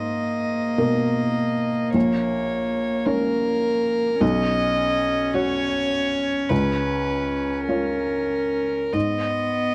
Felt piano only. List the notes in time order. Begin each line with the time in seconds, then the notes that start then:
Already playing: G#2
0.78 B2 A#4
1.94 A#1
3.06 C#4 C#5
4.21 B1
5.34 F#4 C#5
6.50 C#2
7.69 F4 C#5
8.94 G#2